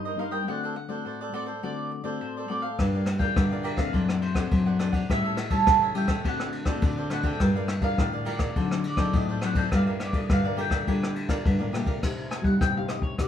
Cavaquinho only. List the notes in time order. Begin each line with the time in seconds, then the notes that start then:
0.05 A#4 C5 D#5
0.19 D#4 A#4 C5 D#5
0.31 A#4 C5 D#5
0.48 F#4 A4 C5 D5
0.63 A4 C5 D5
0.76 muted cavaquinho stroke
0.89 A4 C5 D5
1.05 F#4 A4 C5 D5
1.21 A4 C5 D5
1.33 F#4 A4 C5 D5
1.46 A4 C5 D5
1.63 F#4 A4 C5 D5
1.91 muted cavaquinho stroke
2.04 A4 C5 D5
2.37 A4 C5 D5
2.49 F#4 A4 C5 D5
2.62 A4 C5 D5
2.79 G4 A#4 D5 F5
2.94 A#4 D5 F5
3.07 muted cavaquinho stroke
3.19 A#4 D5 F5
3.36 G4 A#4 D5 F5
3.51 A#4 D5 F5
3.63 G4 A#4 D5 F5
3.77 A#4 D5 F5
3.94 D4 C5 D5 F#5
4.22 muted cavaquinho stroke
4.34 C5 D5 F#5
4.66 C5 D5 F#5
4.79 D4 C5 D5 F#5
4.92 C5 D5 F#5
5.09 G4 A4 C#5 E5
5.24 A4 C#5 E5
5.37 muted cavaquinho stroke
5.50 A4 C#5 E5
5.67 G4 A4 C#5 E5
5.82 A4 C#5 E5
5.95 G4 A4 C#5 E5
6.07 A4 C#5 E5
6.24 F#4 A4 C5 D5
6.52 muted cavaquinho stroke
6.65 A4 C5 D5
6.97 A4 C5 D5
7.10 F#4 A4 C5 D5
7.23 A4 C5 D5
7.40 G4 A#4 D5 F5
7.56 A#4 D5 F5
7.69 muted cavaquinho stroke
7.81 A#4 D5 F5
7.98 G4 A#4 D5 F5
8.12 A#4 D5 F5
8.25 G4 A#4 D5 F5
8.39 A#4 D5 F5
8.56 F#4 A4 C5 D5
8.83 muted cavaquinho stroke
8.97 A4 C5 D5
9.29 A4 C5 D5
9.42 F#4 A4 C5 D5
9.55 A4 C5 D5
9.72 G4 A#4 D5 F5
9.87 A#4 D5 F5
9.99 muted cavaquinho stroke
10.13 A#4 D5 F5
10.30 G4 A#4 D5 F5
10.44 A#4 D5 F5
10.57 G4 A#4 D5 F5
10.71 A#4 D5 F5
10.87 G4 A#4 D5 F5
11.15 muted cavaquinho stroke
11.29 A#4 D5 F5
11.59 A#4 D5 F5
11.73 G4 A#4 D5 F5
11.86 A#4 D5 F5